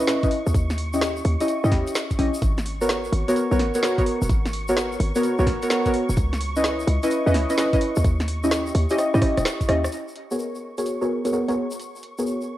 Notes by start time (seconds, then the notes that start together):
Already playing: C#6
0.00 C#4 D#5
0.07 C#4 E4 B4 D#5, snare, shaker
0.23 C#4 E4 B4 D#5, kick, closed hi-hat, shaker
0.31 open hi-hat
0.47 D#2, shaker
0.54 D#2, kick, closed hi-hat, shaker
0.70 snare, shaker
0.78 open hi-hat
0.93 C#4 E4 G4 D#5, shaker
1.01 snare, shaker
1.16 shaker
1.25 D#2, open hi-hat
1.40 C#4 E4 G4 D#5, closed hi-hat, shaker
1.48 closed hi-hat, shaker
1.64 G2 C#4 E4 G4 D#5, shaker
1.72 D#2 C#4 E4 G4 D#5, kick, snare, open hi-hat
1.87 closed hi-hat, shaker
1.95 snare, shaker
2.10 kick, closed hi-hat, shaker
2.19 A#1 C#4 E4 G4 D#5, open hi-hat
2.34 shaker
2.42 G#1 C#6, kick, closed hi-hat, shaker
2.58 snare, shaker
2.66 open hi-hat
2.81 B3 F#4 A#4 C#5, shaker
2.89 snare, shaker
3.04 shaker
3.12 G#1, open hi-hat
3.28 B3 F#4 A#4 C#5, closed hi-hat, shaker
3.36 closed hi-hat, shaker
3.51 B1 B3 F#4 A#4 C#5, shaker
3.59 G#1, snare, open hi-hat
3.74 B3 F#4 A#4 C#5, closed hi-hat, shaker
3.83 B3 F#4 A#4 C#5, snare, shaker
3.98 B3 F#4 A#4 C#5, kick, closed hi-hat, shaker
4.06 open hi-hat
4.22 D#1, shaker
4.29 G#1, kick, closed hi-hat, shaker
4.45 snare, shaker
4.53 open hi-hat
4.68 B3 F#4 A#4 C#5, shaker
4.77 snare, shaker
4.92 shaker
5.00 G#1, open hi-hat
5.15 B3 F#4 A#4 C#5, closed hi-hat, shaker
5.23 closed hi-hat, shaker
5.39 B1 B3 F#4 A#4 C#5, shaker
5.47 G#1, kick, snare, open hi-hat
5.62 B3 F#4 A#4 C#5, closed hi-hat, shaker
5.70 B3 F#4 A#4 C#5, snare, shaker
5.85 B3 F#4 A#4 C#5, kick, closed hi-hat, shaker
5.94 open hi-hat
6.09 D#1, shaker
6.16 C#2, kick, closed hi-hat, shaker
6.33 snare, shaker
6.41 open hi-hat
6.56 C#4 E4 B4 D#5, shaker
6.64 snare, shaker
6.80 shaker
6.87 C#2, open hi-hat
7.03 C#4 E4 B4 D#5, closed hi-hat, shaker
7.10 closed hi-hat, shaker
7.26 E2 C#4 E4 B4 D#5, shaker
7.34 C#2, snare, open hi-hat
7.50 C#4 E4 B4 D#5, closed hi-hat, shaker
7.58 C#4 E4 B4 D#5, snare, shaker
7.73 C#4 E4 B4 D#5, kick, closed hi-hat, shaker
7.81 open hi-hat
7.96 D#2, shaker
8.04 D#2, kick, closed hi-hat
8.20 snare, shaker
8.28 open hi-hat
8.44 C#4 E4 G4 D#5, shaker
8.51 snare, shaker
8.66 shaker
8.75 D#2, open hi-hat
8.90 C#4 E4 G4 D#5, closed hi-hat, shaker
8.98 cross-stick, closed hi-hat, shaker
9.14 G2 C#4 E4 G4 D#5, cross-stick, shaker
9.22 C#4 E4 G4 D#5, kick, cross-stick, open hi-hat
9.37 D#1, cross-stick, closed hi-hat, shaker
9.45 cross-stick, snare, shaker
9.61 kick, closed hi-hat, shaker
9.69 D#2 C#4 E4 G4 D#5, cross-stick, open hi-hat
9.84 cross-stick, shaker
9.92 C#6, closed hi-hat, shaker
10.08 shaker
10.16 closed hi-hat
10.31 B3 F#4 G#4 A#4 C#5, shaker
10.39 shaker
10.55 shaker
10.78 B3 F#4 G#4 A#4 C#5, closed hi-hat, shaker
10.86 closed hi-hat, shaker
11.01 B3 F#4 G#4 A#4 C#5, shaker
11.25 B3 F#4 G#4 A#4 C#5, closed hi-hat, shaker
11.33 B3 F#4 G#4 A#4 C#5, shaker
11.48 B3 F#4 G#4 A#4 C#5, closed hi-hat, shaker
11.71 closed hi-hat, shaker
11.80 closed hi-hat, shaker
11.96 shaker
12.03 closed hi-hat
12.18 B3 F#4 G#4 A#4 C#5, shaker
12.26 shaker
12.41 shaker